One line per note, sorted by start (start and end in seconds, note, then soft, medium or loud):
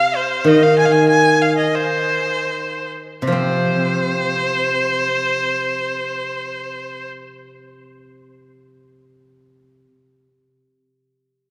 0.00 0.17 F5 medium
0.16 0.49 C5 medium
0.44 2.49 D#3 medium
0.44 0.64 D#5 medium
0.62 0.78 F5 medium
0.78 0.87 G#5 medium
0.85 0.93 F5 medium
0.92 1.08 G#5 medium
1.09 1.43 G#5 medium
1.41 1.57 F5 medium
1.57 1.76 D#5 medium
1.75 2.90 C5 medium
3.22 9.85 C3 soft
3.27 9.77 F3 soft
3.32 8.42 C4 soft
3.32 7.09 C5 medium